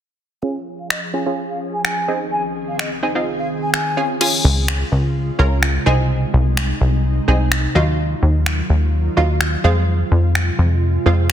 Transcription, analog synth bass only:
4.44 4.84 C#2 loud
4.92 5.31 C#2 medium
5.39 5.78 C#2 loud
5.86 6.25 C2 medium
6.33 6.73 C2 loud
6.81 7.20 C2 loud
7.28 7.67 C2 loud
7.75 8.14 D#2 medium
8.22 8.62 D#2 loud
8.70 9.09 D#2 loud
9.17 9.56 D#2 medium
9.64 10.03 F2 medium
10.11 10.51 F2 loud
10.59 10.98 F2 loud
11.06 11.32 F2 medium

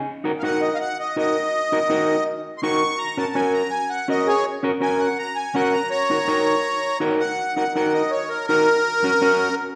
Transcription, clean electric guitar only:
0.24 0.31 D#4 medium
0.24 0.31 F#4 medium
0.24 0.31 A#4 medium
0.43 0.69 D#4 medium
0.43 0.69 F#4 medium
0.43 0.69 A#4 medium
1.16 1.36 D#4 medium
1.16 1.36 F#4 medium
1.16 1.36 A#4 medium
1.72 1.78 D#4 medium
1.72 1.78 F#4 medium
1.72 1.79 A#4 medium
1.90 2.15 D#4 medium
1.90 2.16 F#4 medium
1.90 2.16 A#4 medium
2.63 2.82 D#4 medium
2.63 2.83 F#4 medium
2.63 2.82 A#4 medium
3.17 3.24 C#4 medium
3.17 3.24 F#4 medium
3.17 3.25 A#4 medium
3.35 3.61 C#4 medium
3.35 3.62 F#4 medium
3.35 3.62 A#4 medium
4.08 4.28 C#4 medium
4.08 4.28 F#4 medium
4.08 4.29 A#4 medium
4.63 4.70 C#4 medium
4.63 4.71 F#4 medium
4.63 4.71 A#4 medium
4.80 5.07 C#4 medium
4.80 5.08 F#4 medium
4.80 5.08 A#4 medium
5.55 5.75 C#4 medium
5.55 5.75 F#4 medium
5.55 5.75 A#4 medium
6.10 6.17 D#4 medium
6.10 6.17 F#4 medium
6.10 6.17 A#4 medium
6.28 6.54 D#4 medium
6.28 6.54 F#4 medium
6.28 6.55 A#4 medium
7.00 7.21 D#4 medium
7.00 7.21 F#4 medium
7.00 7.21 A#4 loud
7.57 7.63 D#4 medium
7.57 7.64 F#4 medium
7.57 7.64 A#4 medium
7.75 8.01 D#4 medium
7.75 8.02 F#4 medium
7.75 8.02 A#4 medium
8.49 8.68 D#4 medium
8.49 8.68 F#4 medium
8.49 8.69 A#4 medium
9.04 9.10 C#4 medium
9.04 9.10 F#4 medium
9.04 9.11 A#4 medium
9.22 9.48 C#4 medium
9.22 9.48 F#4 medium
9.22 9.48 A#4 loud

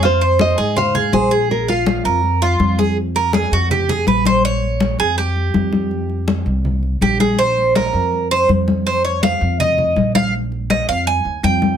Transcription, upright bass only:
0.00 0.52 F2 medium
0.58 1.09 G#2 medium
1.12 1.99 A#1 loud
2.04 2.56 F2 medium
2.59 3.46 F2 loud
3.51 4.03 F2 medium
4.06 4.93 A#1 medium
4.99 5.50 F2 medium
5.54 6.41 F2 loud
6.46 6.98 C2 medium
7.01 7.88 A#1 medium
7.93 8.45 F2 medium
8.48 9.35 F2 medium
9.41 9.93 F2 medium
9.96 10.82 A#1 medium
10.88 11.23 F2 medium
11.25 11.42 D#2 medium
11.43 11.77 F2 loud

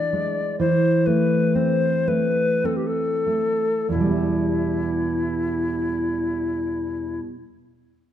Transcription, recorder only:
0.00 0.58 D5 medium
0.60 1.08 C5 medium
1.06 1.57 B4 soft
1.55 2.09 C5 medium
2.08 2.67 B4 soft
2.65 2.78 A4 soft
2.77 2.88 G4 soft
2.87 3.90 A4 soft
3.91 7.20 E4 soft

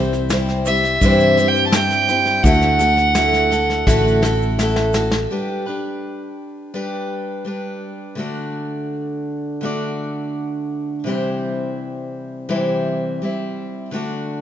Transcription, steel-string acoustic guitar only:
0.00 0.29 G3 medium
0.00 0.31 C4 soft
0.00 0.31 E4 medium
0.00 0.30 C5 medium
0.31 0.66 G3 medium
0.31 0.67 C4 medium
0.31 0.66 E4 medium
0.31 0.64 C5 medium
0.65 1.02 G3 soft
0.65 1.03 C4 soft
0.65 1.02 E4 soft
0.65 1.01 C5 soft
1.02 1.38 C3 medium
1.02 1.38 E3 medium
1.02 1.38 G3 medium
1.02 1.38 C4 medium
1.02 1.38 E4 medium
1.02 1.36 C5 medium
1.37 1.72 G3 soft
1.37 1.73 C4 soft
1.37 1.74 E4 medium
1.37 1.73 C5 medium
1.73 2.09 G3 medium
1.73 2.09 C4 medium
1.73 2.08 E4 medium
1.73 2.07 C5 medium
2.09 2.44 G3 soft
2.09 2.45 C4 soft
2.09 2.45 E4 soft
2.09 2.44 C5 soft
2.44 2.80 D3 medium
2.44 2.80 A3 medium
2.44 2.81 E4 medium
2.44 2.80 F#4 medium
2.44 2.78 A4 medium
2.79 3.15 E4 soft
2.79 3.16 F#4 soft
2.79 3.15 A4 medium
3.15 3.51 A3 medium
3.15 3.52 E4 medium
3.15 3.50 F#4 medium
3.15 3.49 A4 medium
3.51 3.86 E4 medium
3.51 3.86 F#4 medium
3.51 3.87 A4 medium
3.87 4.23 D3 medium
3.87 4.23 A3 medium
3.87 4.23 E4 medium
3.87 4.23 F#4 medium
3.87 4.21 A4 medium
4.22 4.59 E4 medium
4.22 4.59 F#4 medium
4.22 4.58 A4 medium
4.58 4.94 A3 medium
4.58 4.95 E4 medium
4.58 4.94 F#4 medium
4.63 4.94 A4 medium
4.95 5.31 E4 soft
4.95 5.31 F#4 medium
4.95 5.30 A4 medium
5.31 5.66 G3 medium
5.31 5.66 D4 medium
5.31 5.67 G4 medium
5.31 5.65 B4 medium
5.66 6.73 D4 soft
5.66 6.74 G4 soft
5.66 6.73 B4 soft
6.74 7.43 G3 medium
6.74 7.45 D4 medium
6.74 7.46 G4 medium
6.74 7.46 B4 medium
7.45 8.16 G3 soft
7.45 8.17 D4 medium
7.45 8.18 G4 medium
7.45 8.18 B4 medium
8.15 9.59 D3 medium
8.15 9.60 A3 medium
8.15 9.61 D4 medium
8.15 9.61 F#4 medium
8.20 9.62 D5 medium
9.61 11.04 D3 medium
9.61 11.05 A3 medium
9.61 11.05 D4 medium
9.61 11.06 F#4 medium
9.65 11.06 D5 medium
11.04 12.47 C3 medium
11.04 12.48 E3 medium
11.04 12.48 G3 medium
11.04 12.49 C4 medium
11.08 12.49 E4 medium
11.08 12.49 C5 medium
12.49 13.20 C3 medium
12.49 13.20 E3 medium
12.49 13.20 G3 medium
12.49 13.21 C4 medium
12.49 13.21 E4 medium
12.49 13.21 C5 medium
13.22 13.92 G3 soft
13.22 13.93 C4 medium
13.22 13.93 E4 medium
13.22 13.94 C5 medium
13.91 14.41 D3 medium
13.91 14.41 A3 medium
13.91 14.41 D4 medium
13.91 14.41 F#4 medium
13.96 14.41 D5 medium

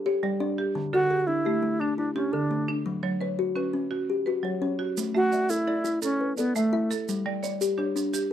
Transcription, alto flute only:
0.94 1.29 F#4 loud
1.27 1.81 E4 medium
1.80 1.97 D4 medium
1.97 2.14 D4 medium
2.15 2.34 C#4 medium
2.32 2.72 D4 medium
5.16 5.51 F#4 loud
5.50 6.02 E4 medium
6.03 6.36 C#4 medium
6.38 6.54 B3 medium
6.56 6.93 A3 medium

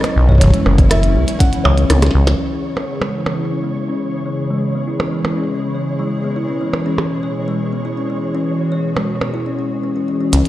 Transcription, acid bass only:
0.16 0.37 B1 loud
0.41 0.51 F#1 loud
0.66 1.17 F#1 medium
1.16 1.26 C#2 loud
1.65 1.86 C#2 loud
1.90 2.10 C#2 medium
2.15 2.35 C#2 loud
10.33 10.43 C#2 loud

